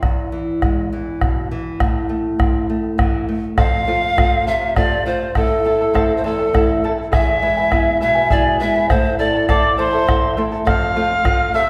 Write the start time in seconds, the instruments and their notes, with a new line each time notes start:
0.03 nylon-string guitar E2, bombo rim, bombo low
0.32 nylon-string guitar E3
0.62 nylon-string guitar G#3, bombo rim, bombo low
0.93 nylon-string guitar E3
1.21 nylon-string guitar B2, bombo rim, bombo low
1.51 nylon-string guitar E3
1.80 nylon-string guitar A2, bombo rim, bombo low
2.09 nylon-string guitar A3, bombo rim
2.39 nylon-string guitar C4, bombo rim, bombo low
2.55 bombo rim
2.70 nylon-string guitar A3
2.84 bombo rim
2.98 nylon-string guitar E3, bombo rim, bombo low
3.29 nylon-string guitar A3
3.44 bombo rim
3.57 nylon-string guitar F2, charango A4 C5 F5, pan flute F5, bombo rim, bombo low
3.87 nylon-string guitar A3 C4 F4, charango A4 C5 F5, bombo rim
4.02 charango C5 F5
4.16 nylon-string guitar A3 C4 F4, charango A4 C5 F5, bombo rim, bombo low
4.32 bombo rim
4.46 nylon-string guitar C3, charango A4 C5 F5, pan flute E5
4.61 charango C5 F5
4.76 nylon-string guitar A3 C4 F4, charango A4 C5 F5, pan flute D5, bombo rim, bombo low
5.05 nylon-string guitar A3 C4 F4, charango A4 C5 F5, pan flute C5
5.20 charango C5 F5
5.35 nylon-string guitar A2, charango E4 A4 E5 A5, pan flute A4, bombo rim, bombo low
5.64 nylon-string guitar A3 C4 E4, charango E4 A4 E5 A5
5.81 charango E4 A4 A5
5.94 nylon-string guitar A3 C4 E4, charango E4 A4 C5 E5 A5, bombo rim, bombo low
6.11 bombo rim
6.17 pan flute C5
6.24 nylon-string guitar E2, charango E4 A4 E5 A5, pan flute A4
6.39 charango E4 A4 A5
6.53 nylon-string guitar A3 C4 E4, charango E4 A4 E5 A5, bombo rim, bombo low
6.84 nylon-string guitar A3 C4 E4, charango E4 A4 E5 A5
6.97 charango E4 A4 A5
7.12 nylon-string guitar E2, charango E4 G#4 B4 E5 G#5, pan flute E5, bombo rim, bombo low
7.42 nylon-string guitar G#3 B3 E4, charango E4 B4 E5 G#5
7.57 charango E4 B4 G#5
7.71 nylon-string guitar G#3 B3 E4, charango E4 B4 E5 G#5, bombo rim, bombo low
7.88 bombo rim
8.00 nylon-string guitar B2, charango E4 B4 E5 G#5, pan flute E5
8.15 charango E4 B4 G#5
8.30 nylon-string guitar G#3 B3 E4, charango E4 G#4 B4 E5 G#5, pan flute D5, bombo low
8.59 nylon-string guitar G#3 B3 E4, charango E4 B4 E5 G#5, pan flute E5
8.75 charango E4 B4 G#5
8.89 nylon-string guitar A2, charango E4 A4 E5 A5, pan flute C5, bombo rim, bombo low
9.05 bombo rim
9.19 nylon-string guitar A3 C4 E4, charango E4 A4 E5 A5, pan flute D5, bombo rim
9.34 charango E4 A4 A5
9.48 nylon-string guitar A3 C4 E4, charango E4 A4 C5 E5 A5, pan flute D5, quena D6, bombo rim, bombo low
9.64 bombo rim
9.77 nylon-string guitar E2, charango E4 A4 E5 A5, pan flute C5, quena C6
9.93 charango E4 A4 A5, bombo rim
10.07 nylon-string guitar A3 C4 E4, charango E4 A4 E5 A5, bombo rim, bombo low
10.37 nylon-string guitar A3 C4 E4, charango E4 A4 E5 A5, bombo rim
10.52 charango E4 A4 A5
10.66 nylon-string guitar F2, charango A4 C5 F5, pan flute F5, quena F6, bombo rim, bombo low
10.95 nylon-string guitar A3 C4 F4, charango A4 C5 F5, bombo rim
11.10 charango C5 F5
11.24 nylon-string guitar A3 C4 F4, charango A4 C5 F5, bombo rim, bombo low
11.40 bombo rim
11.54 nylon-string guitar C3, charango A4 C5 F5, pan flute E5, quena E6